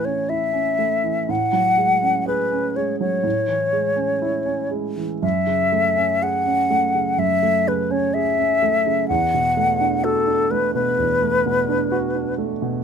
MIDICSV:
0, 0, Header, 1, 3, 480
1, 0, Start_track
1, 0, Tempo, 986842
1, 631, Time_signature, 4, 2, 24, 8
1, 3026, Tempo, 963082
1, 3986, Tempo, 941915
1, 6377, End_track
2, 0, Start_track
2, 0, Title_t, "Flute"
2, 0, Program_c, 0, 73
2, 24, Note_on_c, 0, 73, 44
2, 143, Note_on_c, 0, 76, 52
2, 150, Note_off_c, 0, 73, 0
2, 633, Note_on_c, 0, 78, 54
2, 640, Note_off_c, 0, 76, 0
2, 1104, Note_off_c, 0, 78, 0
2, 1107, Note_on_c, 0, 71, 53
2, 1344, Note_on_c, 0, 73, 43
2, 1351, Note_off_c, 0, 71, 0
2, 1456, Note_off_c, 0, 73, 0
2, 1459, Note_on_c, 0, 73, 50
2, 2283, Note_off_c, 0, 73, 0
2, 2543, Note_on_c, 0, 76, 57
2, 3029, Note_on_c, 0, 78, 60
2, 3037, Note_off_c, 0, 76, 0
2, 3509, Note_on_c, 0, 76, 60
2, 3516, Note_off_c, 0, 78, 0
2, 3753, Note_on_c, 0, 71, 49
2, 3760, Note_off_c, 0, 76, 0
2, 3869, Note_on_c, 0, 73, 49
2, 3877, Note_off_c, 0, 71, 0
2, 3982, Note_on_c, 0, 76, 58
2, 3989, Note_off_c, 0, 73, 0
2, 4459, Note_off_c, 0, 76, 0
2, 4462, Note_on_c, 0, 78, 61
2, 4951, Note_on_c, 0, 69, 60
2, 4958, Note_off_c, 0, 78, 0
2, 5189, Note_on_c, 0, 71, 56
2, 5196, Note_off_c, 0, 69, 0
2, 5307, Note_off_c, 0, 71, 0
2, 5310, Note_on_c, 0, 71, 59
2, 6126, Note_off_c, 0, 71, 0
2, 6377, End_track
3, 0, Start_track
3, 0, Title_t, "Grand piano"
3, 0, Program_c, 1, 0
3, 0, Control_c, 1, 64, 127
3, 0, Note_on_c, 1, 45, 26
3, 0, Note_on_c, 1, 52, 28
3, 0, Note_on_c, 1, 57, 27
3, 0, Note_on_c, 1, 61, 27
3, 0, Note_on_c, 1, 64, 27
3, 27, Note_off_c, 1, 61, 0
3, 27, Note_on_c, 1, 61, 26
3, 96, Note_off_c, 1, 52, 0
3, 143, Note_off_c, 1, 64, 0
3, 143, Note_on_c, 1, 64, 29
3, 218, Note_off_c, 1, 61, 0
3, 258, Note_on_c, 1, 61, 25
3, 337, Note_off_c, 1, 64, 0
3, 383, Note_off_c, 1, 57, 0
3, 383, Note_on_c, 1, 57, 26
3, 457, Note_off_c, 1, 61, 0
3, 505, Note_on_c, 1, 52, 25
3, 580, Note_off_c, 1, 57, 0
3, 611, Note_off_c, 1, 45, 0
3, 627, Note_on_c, 1, 45, 37
3, 629, Note_off_c, 1, 52, 0
3, 639, Control_c, 1, 64, 0
3, 724, Control_c, 1, 64, 127
3, 743, Note_on_c, 1, 54, 27
3, 863, Note_on_c, 1, 56, 28
3, 939, Note_off_c, 1, 54, 0
3, 982, Note_on_c, 1, 61, 27
3, 1058, Note_off_c, 1, 56, 0
3, 1105, Note_on_c, 1, 68, 28
3, 1177, Note_off_c, 1, 61, 0
3, 1224, Note_on_c, 1, 61, 29
3, 1296, Note_off_c, 1, 68, 0
3, 1345, Note_on_c, 1, 56, 30
3, 1414, Note_off_c, 1, 61, 0
3, 1462, Note_on_c, 1, 54, 26
3, 1533, Note_off_c, 1, 56, 0
3, 1559, Note_off_c, 1, 45, 0
3, 1574, Note_on_c, 1, 45, 32
3, 1579, Note_off_c, 1, 54, 0
3, 1589, Control_c, 1, 64, 0
3, 1674, Control_c, 1, 64, 127
3, 1690, Note_on_c, 1, 52, 29
3, 1812, Note_on_c, 1, 56, 29
3, 1886, Note_off_c, 1, 52, 0
3, 1927, Note_on_c, 1, 61, 28
3, 2008, Note_off_c, 1, 56, 0
3, 2052, Note_on_c, 1, 64, 31
3, 2127, Note_off_c, 1, 61, 0
3, 2168, Note_on_c, 1, 61, 28
3, 2250, Note_off_c, 1, 64, 0
3, 2289, Note_on_c, 1, 56, 29
3, 2368, Note_off_c, 1, 61, 0
3, 2414, Note_on_c, 1, 52, 29
3, 2489, Note_off_c, 1, 56, 0
3, 2521, Note_off_c, 1, 45, 0
3, 2539, Note_off_c, 1, 52, 0
3, 2542, Note_on_c, 1, 42, 38
3, 2552, Control_c, 1, 64, 0
3, 2646, Control_c, 1, 64, 127
3, 2659, Note_on_c, 1, 49, 27
3, 2784, Note_on_c, 1, 57, 31
3, 2854, Note_off_c, 1, 49, 0
3, 2901, Note_on_c, 1, 61, 30
3, 2977, Note_off_c, 1, 57, 0
3, 3026, Note_on_c, 1, 68, 31
3, 3096, Note_off_c, 1, 61, 0
3, 3144, Note_on_c, 1, 61, 30
3, 3219, Note_off_c, 1, 68, 0
3, 3266, Note_on_c, 1, 57, 32
3, 3337, Note_off_c, 1, 61, 0
3, 3388, Note_on_c, 1, 49, 28
3, 3458, Note_off_c, 1, 57, 0
3, 3485, Note_off_c, 1, 42, 0
3, 3504, Note_on_c, 1, 42, 31
3, 3578, Note_off_c, 1, 49, 0
3, 3627, Note_on_c, 1, 57, 30
3, 3748, Note_on_c, 1, 49, 33
3, 3819, Note_off_c, 1, 57, 0
3, 3865, Note_on_c, 1, 61, 32
3, 3939, Note_off_c, 1, 49, 0
3, 3988, Note_on_c, 1, 68, 35
3, 4058, Note_off_c, 1, 61, 0
3, 4108, Note_on_c, 1, 61, 29
3, 4181, Note_off_c, 1, 68, 0
3, 4229, Note_on_c, 1, 57, 33
3, 4301, Note_off_c, 1, 61, 0
3, 4352, Note_on_c, 1, 49, 33
3, 4421, Note_off_c, 1, 57, 0
3, 4447, Note_off_c, 1, 42, 0
3, 4470, Note_off_c, 1, 49, 0
3, 4473, Note_on_c, 1, 40, 43
3, 4475, Control_c, 1, 64, 0
3, 4547, Control_c, 1, 64, 127
3, 4595, Note_on_c, 1, 47, 33
3, 4711, Note_on_c, 1, 57, 34
3, 4784, Note_off_c, 1, 47, 0
3, 4830, Note_on_c, 1, 62, 31
3, 4903, Note_off_c, 1, 57, 0
3, 4950, Note_on_c, 1, 66, 34
3, 5023, Note_off_c, 1, 62, 0
3, 5067, Note_on_c, 1, 62, 36
3, 5143, Note_off_c, 1, 66, 0
3, 5192, Note_on_c, 1, 57, 35
3, 5261, Note_off_c, 1, 62, 0
3, 5311, Note_on_c, 1, 47, 30
3, 5384, Note_off_c, 1, 57, 0
3, 5413, Note_off_c, 1, 40, 0
3, 5432, Note_on_c, 1, 40, 32
3, 5503, Note_off_c, 1, 47, 0
3, 5552, Note_on_c, 1, 57, 33
3, 5673, Note_on_c, 1, 47, 36
3, 5742, Note_off_c, 1, 57, 0
3, 5790, Note_on_c, 1, 62, 35
3, 5861, Note_off_c, 1, 47, 0
3, 5907, Note_on_c, 1, 66, 40
3, 5978, Note_off_c, 1, 62, 0
3, 6025, Note_on_c, 1, 62, 33
3, 6096, Note_off_c, 1, 66, 0
3, 6144, Note_on_c, 1, 57, 35
3, 6216, Note_off_c, 1, 62, 0
3, 6265, Note_on_c, 1, 47, 36
3, 6338, Note_off_c, 1, 57, 0
3, 6367, Note_off_c, 1, 40, 0
3, 6377, Note_off_c, 1, 47, 0
3, 6377, End_track
0, 0, End_of_file